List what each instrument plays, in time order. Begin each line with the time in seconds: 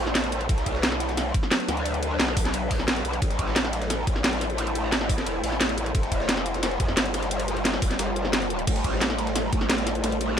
Already playing: synth drone A3 E4 C5
0.00 wobble bass A1
0.07 snare
0.15 snare, closed hi-hat, ride
0.24 snare, closed hi-hat
0.32 closed hi-hat, ride
0.41 closed hi-hat, ride
0.49 wobble bass B1, synth drone F#3 D4 B4, kick, closed hi-hat, ride
0.58 snare, closed hi-hat
0.66 kick, closed hi-hat, ride
0.75 snare
0.83 snare, closed hi-hat, ride
0.92 snare, ride
1.00 snare, closed hi-hat, ride
1.09 snare, closed hi-hat
1.17 snare, closed hi-hat, ride
1.34 kick, closed hi-hat, ride
1.43 snare
1.51 snare, closed hi-hat, ride
1.60 closed hi-hat
1.68 wobble bass D2, snare, closed hi-hat, ride
1.77 closed hi-hat
1.86 closed hi-hat, ride
1.94 closed hi-hat
2.03 closed hi-hat, ride
2.20 wobble bass B1, snare, closed hi-hat, ride
2.28 snare
2.37 kick, open hi-hat, ride
2.45 snare, closed hi-hat
2.54 closed hi-hat, ride
2.71 kick, closed hi-hat, open hi-hat
2.79 wobble bass A#1, snare
2.88 snare, closed hi-hat, ride
2.96 snare, closed hi-hat
3.05 wobble bass B1, closed hi-hat, ride
3.13 closed hi-hat, ride
3.22 wobble bass A1, synth drone A3 E4 C5, kick, closed hi-hat, ride
3.30 snare, closed hi-hat
3.39 kick, closed hi-hat, ride
3.47 snare
3.56 snare, closed hi-hat, ride
3.64 snare, ride
3.73 snare, closed hi-hat, ride
3.82 snare, closed hi-hat
3.90 snare, closed hi-hat, ride
4.07 wobble bass A1, kick, closed hi-hat, ride
4.16 snare
4.24 snare, closed hi-hat, ride
4.33 closed hi-hat
4.41 snare, closed hi-hat, ride
4.50 closed hi-hat
4.58 closed hi-hat, ride
4.67 closed hi-hat
4.75 closed hi-hat, ride
4.92 snare, closed hi-hat, ride
5.01 snare
5.09 kick, open hi-hat, ride
5.18 snare, closed hi-hat
5.26 wobble bass F1, closed hi-hat, ride
5.43 wobble bass A1, closed hi-hat, open hi-hat
5.52 snare
5.61 snare, closed hi-hat, ride
5.69 snare, closed hi-hat
5.78 closed hi-hat, ride
5.86 closed hi-hat, ride
5.95 wobble bass F1, synth drone G3 F4, kick, closed hi-hat, ride
6.03 snare, closed hi-hat
6.12 kick, closed hi-hat, ride
6.20 snare
6.29 snare, closed hi-hat, ride
6.37 snare, ride
6.46 closed hi-hat, ride
6.54 snare, closed hi-hat
6.63 snare, closed hi-hat, ride
6.71 ride
6.80 wobble bass F2, kick, closed hi-hat, ride
6.88 snare
6.97 wobble bass G1, snare, closed hi-hat, ride
7.06 closed hi-hat
7.14 snare, closed hi-hat, ride
7.23 snare, closed hi-hat
7.31 closed hi-hat, ride
7.40 closed hi-hat, ride
7.48 snare, closed hi-hat
7.57 ride
7.65 snare, closed hi-hat, ride
7.74 snare
7.82 wobble bass F1, kick, open hi-hat, ride
7.91 snare, closed hi-hat
7.99 wobble bass G1, snare, closed hi-hat, ride
8.16 closed hi-hat
8.25 snare
8.33 snare, closed hi-hat, ride
8.42 closed hi-hat, ride
8.50 closed hi-hat
8.59 closed hi-hat
8.67 wobble bass A1, felt piano A3, synth drone A3 E4, kick, closed hi-hat, ride, crash
8.76 snare, closed hi-hat
8.84 kick, closed hi-hat, ride
8.93 snare
9.01 felt piano A3, snare, closed hi-hat, ride
9.10 snare, ride
9.18 felt piano A3, snare, closed hi-hat, ride
9.27 snare, closed hi-hat
9.36 snare, closed hi-hat, ride
9.53 wobble bass A1, felt piano A3, kick, closed hi-hat, ride
9.61 snare
9.70 felt piano A3, snare, closed hi-hat, ride
9.78 closed hi-hat
9.87 snare, closed hi-hat, ride
9.95 closed hi-hat
10.04 felt piano A3, closed hi-hat, ride
10.12 closed hi-hat
10.21 felt piano A3, closed hi-hat, ride